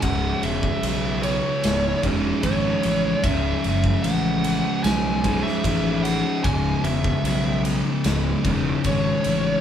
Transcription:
<<
  \new Staff \with { instrumentName = "Lead electric guitar" } { \time 4/4 \key cis \minor \tempo 4 = 75 fis''8 e''4 cis''4 r8 cis''4 | e''4 fis''4 gis''8. e''8. fis''8 | gis''8 e''4 r4. cis''4 | }
  \new Staff \with { instrumentName = "Distorted electric guitar" } { \clef bass \time 4/4 \key cis \minor <cis, gis, cis>2~ <cis, gis, cis>8 <cis, gis, cis>8 <cis, gis, cis>4 | <cis, gis, cis>2~ <cis, gis, cis>8 <cis, gis, cis>8 <cis, gis, cis>4 | <cis, gis, cis>2~ <cis, gis, cis>8 <cis, gis, cis>8 <cis, gis, cis>4 | }
  \new Staff \with { instrumentName = "Fingered electric bass" } { \clef bass \time 4/4 \key cis \minor cis,,8 e,,8 b,,4 cis,,8 e,,8 gis,,8 a,,8 | cis,,8 fis,,8 a,,4 b,,4 a,,4 | cis,,8 e,,8 b,,4 cis,,8 e,,8 gis,,8 a,,8 | }
  \new DrumStaff \with { instrumentName = "Drums" } \drummode { \time 4/4 <bd cymr>8 cymr16 bd16 cymr8 cymr8 <cymr sn>8 <bd cymr>8 <bd cymr>8 cymr8 | <bd cymr>8 cymr16 bd16 cymr8 cymr8 <cymr sn>8 <bd cymr>16 sn16 <bd cymr>8 cymr8 | <bd cymr>8 cymr16 bd16 cymr8 cymr8 <cymr sn>8 <bd cymr>8 <bd cymr>8 cymr8 | }
>>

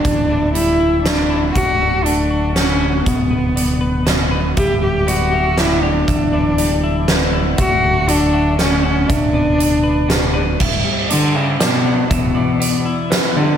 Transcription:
<<
  \new Staff \with { instrumentName = "Clean electric guitar" } { \time 3/4 \key e \dorian \tempo 4 = 119 r2. | r2. | r2. | e''4 d''8 e''8 d''4 |
e''8 d''8 d''4 b'8 d''8 | e''4 d''8 e''8 d''4 | e''8 d''8 d''4 b'8 d''8 | e''4 d''8 e''8 d''4 |
e''8 d''8 d''4 b'8 d''8 | }
  \new Staff \with { instrumentName = "Cello" } { \time 3/4 \key e \dorian d'4 e'4 d'8. r16 | fis'4 d'4 cis'4 | b2 r4 | g'8 g'8 fis'4 e'8 d'8~ |
d'2 r4 | fis'4 d'4 cis'8 cis'8 | d'2~ d'8 r8 | r4 d8 cis8 b,4 |
b,4. r4 d8 | }
  \new Staff \with { instrumentName = "Clean electric guitar" } { \time 3/4 \key e \dorian e,8 e8 g8 e'8 b8 e'8 | d,8 d8 a8 fis'8 cis'8 fis'8 | b,8 b8 d'8 b'8 fis'8 b'8 | g,8 g8 b8 g'8 d'8 g'8 |
e,8 e8 g8 e'8 b8 e'8 | d,8 d8 a8 fis'4 fis'8 | b,8 b8 d'8 b'8 fis'8 b'8 | g,8 g8 d'8 g'8 d'8 b8 |
e,8 e8 b8 e'8 b8 g8 | }
  \new Staff \with { instrumentName = "Fingered electric bass" } { \clef bass \time 3/4 \key e \dorian d,,2. | d,,2. | d,,2. | d,,2. |
d,,2. | d,,2. | d,,2. | d,,8 r2 r8 |
d,,8 r2 r8 | }
  \new DrumStaff \with { instrumentName = "Drums" } \drummode { \time 3/4 <hh bd>4 hh4 <hh sn>4 | <hh bd>4 hh4 <hh sn>4 | <hh bd>4 hh4 <hh sn>4 | <hh bd>4 hh4 <hh sn>4 |
<hh bd>4 hh4 <hh sn>4 | <hh bd>4 hh4 <hh sn>4 | <hh bd>4 hh4 <hh sn>4 | <cymc bd>4 hh4 <hh sn>4 |
<hh bd>4 hh4 <hh sn>4 | }
>>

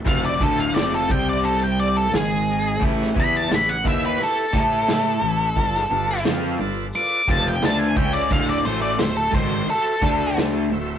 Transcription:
<<
  \new Staff \with { instrumentName = "Lead electric guitar" } { \time 4/4 \key a \dorian \tempo 4 = 87 f''16 d''16 a'16 f''16 d''16 a'16 g''16 d''16 a'16 g''16 d''16 a'16 gis'4 | r8 b''16 a''16 b''16 fis''16 e''16 b'16 a'2~ | a'4 r4 d'''8 a''16 g''16 a''16 gis''16 g''16 d''16 | f''16 d''16 c''16 d''16 c''16 a'16 c''8 a'4 r4 | }
  \new Staff \with { instrumentName = "Tonewheel organ" } { \time 4/4 \key a \dorian <e' fis' a' c''>8 <e' fis' a' c''>8 <e' fis' a' c''>8 <g c' g' c''>4 <g c' g' a'>8 <gis dis' gis' dis''>8 <gis dis' gis' dis''>8 | <e' g' b' cis''>8 <e' g' b' e''>8 <e' g' b' cis''>8 <e' g' b' e''>8 <e' g' b' cis''>8 <e' g' b' cis''>8 <e' g' b' e''>8 <e' g' b' cis''>8 | <f' a' b' d''>8 <f' a' b' d''>8 <f' a' b' f''>8 <f' a' b' d''>8 <f' a' b' d''>8 <f' a' b' d''>8 <f' a' b' d''>8 <f' a' b' e''>8 | <fis' a' c'' e''>8 <fis' a' c'' e''>8 <fis' a' c'' e''>8 <fis' a' c'' d''>8 <fis' a' c'' e''>8 <fis' a' c'' e''>8 <fis' a' c'' d''>8 <fis' a' c'' e''>8 | }
  \new Staff \with { instrumentName = "Overdriven electric guitar" } { \clef bass \time 4/4 \key a \dorian <f, c f>8 <d, a, d>8 <f, c f>8 <c g c'>4. <gis, dis gis>4 | <a, e a>8 <e b e'>8 <a, e>8 <ees bes ees'>8 r8 <a e' a'>4 <a, e>8 | <g, d>8 <g, d>8 <f c' f'>8 <g, d>8 r8 <f, c f>8 <d a d'>8 <cis gis cis'>8 | <d, a, d>8 <a, e a>8 <d, a,>8 <gis, ees gis>8 r8 <d a d'>4 <d, a,>8 | }
  \new Staff \with { instrumentName = "Fingered electric bass" } { \clef bass \time 4/4 \key a \dorian f,,8 d,,8 f,,8 c,4. gis,,4 | a,,8 e,8 a,,8 ees,8 r8 a,4 a,,8 | g,,8 g,,8 f,8 g,,8 r8 f,,8 d,8 cis,8 | d,,8 a,,8 d,,8 gis,,8 r8 d,4 d,,8 | }
  \new DrumStaff \with { instrumentName = "Drums" } \drummode { \time 4/4 <hho bd>8 bd8 <hho sn>8 bd8 hho4 <hho sn>4 | <hho bd>16 sn16 bd8 <hho sn>8 bd8 hho8 bd8 <hho sn>4 | <hho bd>16 sn8. <hho sn>4 hho8 <bd sn>8 <hho sn>8 bd8 | <hho bd>4 <hho sn>8 bd8 hho8 <bd sn>8 <hho sn>4 | }
>>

